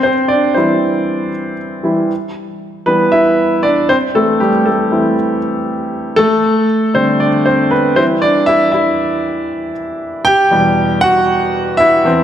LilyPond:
<<
  \new Staff \with { instrumentName = "Grand piano" } { \time 4/4 \key e \minor \tempo 4 = 118 <c' c''>8 <d' d''>8 <c' c''>2 r4 | r4. <b b'>8 <e' e''>4 <d' d''>8 <c' c''>8 | <a a'>8 <g g'>8 <a a'>4. r4. | <a a'>4 r8 c''8 <d' d''>8 <c' c''>8 <b b'>8 <c' c''>8 |
<d' d''>8 <e' e''>8 <e' e''>2 r4 | <g' g''>4. <fis' fis''>4. <e' e''>4 | }
  \new Staff \with { instrumentName = "Grand piano" } { \clef bass \time 4/4 \key e \minor r4 <e g e'>4. r4 <e g e'>8 | r4. <e g>8 r2 | <e c' e'>8 r4 <e c' e'>8 r2 | r4. <d g c'>8 r4. <e g e'>8~ |
<e g e'>4 r2. | r8 <e, b, g>8 r2 r8 <e, e c'>8 | }
>>